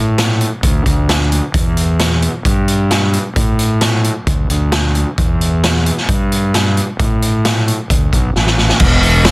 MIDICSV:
0, 0, Header, 1, 3, 480
1, 0, Start_track
1, 0, Key_signature, 1, "minor"
1, 0, Tempo, 453515
1, 1635, Time_signature, 4, 2, 24, 8
1, 9855, End_track
2, 0, Start_track
2, 0, Title_t, "Fingered electric bass"
2, 0, Program_c, 0, 33
2, 0, Note_on_c, 0, 45, 73
2, 463, Note_off_c, 0, 45, 0
2, 670, Note_on_c, 0, 38, 89
2, 860, Note_off_c, 0, 38, 0
2, 908, Note_on_c, 0, 38, 75
2, 1477, Note_off_c, 0, 38, 0
2, 1630, Note_on_c, 0, 40, 80
2, 2388, Note_off_c, 0, 40, 0
2, 2597, Note_on_c, 0, 43, 85
2, 3353, Note_off_c, 0, 43, 0
2, 3557, Note_on_c, 0, 45, 71
2, 4314, Note_off_c, 0, 45, 0
2, 4516, Note_on_c, 0, 38, 88
2, 4707, Note_off_c, 0, 38, 0
2, 4759, Note_on_c, 0, 38, 79
2, 5327, Note_off_c, 0, 38, 0
2, 5487, Note_on_c, 0, 40, 72
2, 6240, Note_off_c, 0, 40, 0
2, 6439, Note_on_c, 0, 43, 82
2, 7195, Note_off_c, 0, 43, 0
2, 7403, Note_on_c, 0, 45, 82
2, 8156, Note_off_c, 0, 45, 0
2, 8364, Note_on_c, 0, 38, 80
2, 8551, Note_off_c, 0, 38, 0
2, 8600, Note_on_c, 0, 35, 69
2, 8788, Note_off_c, 0, 35, 0
2, 8846, Note_on_c, 0, 33, 79
2, 9218, Note_off_c, 0, 33, 0
2, 9318, Note_on_c, 0, 28, 104
2, 9855, Note_off_c, 0, 28, 0
2, 9855, End_track
3, 0, Start_track
3, 0, Title_t, "Drums"
3, 191, Note_on_c, 9, 42, 89
3, 193, Note_on_c, 9, 38, 110
3, 297, Note_off_c, 9, 42, 0
3, 299, Note_off_c, 9, 38, 0
3, 431, Note_on_c, 9, 42, 58
3, 537, Note_off_c, 9, 42, 0
3, 668, Note_on_c, 9, 42, 71
3, 669, Note_on_c, 9, 36, 91
3, 774, Note_off_c, 9, 42, 0
3, 775, Note_off_c, 9, 36, 0
3, 909, Note_on_c, 9, 36, 66
3, 910, Note_on_c, 9, 42, 56
3, 1015, Note_off_c, 9, 36, 0
3, 1015, Note_off_c, 9, 42, 0
3, 1153, Note_on_c, 9, 42, 70
3, 1155, Note_on_c, 9, 38, 99
3, 1259, Note_off_c, 9, 42, 0
3, 1261, Note_off_c, 9, 38, 0
3, 1395, Note_on_c, 9, 42, 50
3, 1501, Note_off_c, 9, 42, 0
3, 1631, Note_on_c, 9, 36, 94
3, 1631, Note_on_c, 9, 42, 72
3, 1736, Note_off_c, 9, 42, 0
3, 1737, Note_off_c, 9, 36, 0
3, 1872, Note_on_c, 9, 42, 59
3, 1978, Note_off_c, 9, 42, 0
3, 2110, Note_on_c, 9, 42, 79
3, 2112, Note_on_c, 9, 38, 108
3, 2216, Note_off_c, 9, 42, 0
3, 2218, Note_off_c, 9, 38, 0
3, 2352, Note_on_c, 9, 42, 52
3, 2458, Note_off_c, 9, 42, 0
3, 2594, Note_on_c, 9, 36, 90
3, 2596, Note_on_c, 9, 42, 73
3, 2700, Note_off_c, 9, 36, 0
3, 2702, Note_off_c, 9, 42, 0
3, 2835, Note_on_c, 9, 42, 55
3, 2941, Note_off_c, 9, 42, 0
3, 3076, Note_on_c, 9, 42, 73
3, 3078, Note_on_c, 9, 38, 88
3, 3182, Note_off_c, 9, 42, 0
3, 3184, Note_off_c, 9, 38, 0
3, 3317, Note_on_c, 9, 42, 53
3, 3423, Note_off_c, 9, 42, 0
3, 3557, Note_on_c, 9, 42, 67
3, 3558, Note_on_c, 9, 36, 84
3, 3663, Note_off_c, 9, 36, 0
3, 3663, Note_off_c, 9, 42, 0
3, 3797, Note_on_c, 9, 42, 57
3, 3903, Note_off_c, 9, 42, 0
3, 4032, Note_on_c, 9, 42, 90
3, 4034, Note_on_c, 9, 38, 109
3, 4138, Note_off_c, 9, 42, 0
3, 4140, Note_off_c, 9, 38, 0
3, 4280, Note_on_c, 9, 42, 59
3, 4385, Note_off_c, 9, 42, 0
3, 4517, Note_on_c, 9, 42, 77
3, 4519, Note_on_c, 9, 36, 90
3, 4623, Note_off_c, 9, 42, 0
3, 4625, Note_off_c, 9, 36, 0
3, 4760, Note_on_c, 9, 42, 57
3, 4866, Note_off_c, 9, 42, 0
3, 4995, Note_on_c, 9, 42, 68
3, 4997, Note_on_c, 9, 38, 99
3, 5100, Note_off_c, 9, 42, 0
3, 5103, Note_off_c, 9, 38, 0
3, 5238, Note_on_c, 9, 42, 48
3, 5344, Note_off_c, 9, 42, 0
3, 5479, Note_on_c, 9, 42, 71
3, 5482, Note_on_c, 9, 36, 97
3, 5585, Note_off_c, 9, 42, 0
3, 5588, Note_off_c, 9, 36, 0
3, 5726, Note_on_c, 9, 42, 54
3, 5832, Note_off_c, 9, 42, 0
3, 5964, Note_on_c, 9, 42, 79
3, 5966, Note_on_c, 9, 38, 106
3, 6070, Note_off_c, 9, 42, 0
3, 6072, Note_off_c, 9, 38, 0
3, 6204, Note_on_c, 9, 42, 58
3, 6310, Note_off_c, 9, 42, 0
3, 6325, Note_on_c, 9, 38, 27
3, 6431, Note_off_c, 9, 38, 0
3, 6442, Note_on_c, 9, 42, 67
3, 6444, Note_on_c, 9, 36, 89
3, 6548, Note_off_c, 9, 42, 0
3, 6549, Note_off_c, 9, 36, 0
3, 6687, Note_on_c, 9, 42, 55
3, 6793, Note_off_c, 9, 42, 0
3, 6923, Note_on_c, 9, 42, 75
3, 6925, Note_on_c, 9, 38, 88
3, 7029, Note_off_c, 9, 42, 0
3, 7031, Note_off_c, 9, 38, 0
3, 7166, Note_on_c, 9, 42, 50
3, 7272, Note_off_c, 9, 42, 0
3, 7404, Note_on_c, 9, 36, 101
3, 7405, Note_on_c, 9, 42, 70
3, 7510, Note_off_c, 9, 36, 0
3, 7511, Note_off_c, 9, 42, 0
3, 7644, Note_on_c, 9, 42, 63
3, 7750, Note_off_c, 9, 42, 0
3, 7883, Note_on_c, 9, 42, 82
3, 7885, Note_on_c, 9, 38, 103
3, 7989, Note_off_c, 9, 42, 0
3, 7991, Note_off_c, 9, 38, 0
3, 8127, Note_on_c, 9, 42, 57
3, 8233, Note_off_c, 9, 42, 0
3, 8362, Note_on_c, 9, 36, 90
3, 8365, Note_on_c, 9, 42, 81
3, 8468, Note_off_c, 9, 36, 0
3, 8470, Note_off_c, 9, 42, 0
3, 8602, Note_on_c, 9, 36, 66
3, 8606, Note_on_c, 9, 42, 56
3, 8708, Note_off_c, 9, 36, 0
3, 8711, Note_off_c, 9, 42, 0
3, 8846, Note_on_c, 9, 38, 51
3, 8952, Note_off_c, 9, 38, 0
3, 8965, Note_on_c, 9, 38, 55
3, 9070, Note_off_c, 9, 38, 0
3, 9081, Note_on_c, 9, 38, 68
3, 9187, Note_off_c, 9, 38, 0
3, 9199, Note_on_c, 9, 38, 73
3, 9305, Note_off_c, 9, 38, 0
3, 9311, Note_on_c, 9, 49, 108
3, 9315, Note_on_c, 9, 36, 112
3, 9417, Note_off_c, 9, 49, 0
3, 9421, Note_off_c, 9, 36, 0
3, 9555, Note_on_c, 9, 46, 63
3, 9661, Note_off_c, 9, 46, 0
3, 9786, Note_on_c, 9, 46, 87
3, 9788, Note_on_c, 9, 38, 121
3, 9855, Note_off_c, 9, 38, 0
3, 9855, Note_off_c, 9, 46, 0
3, 9855, End_track
0, 0, End_of_file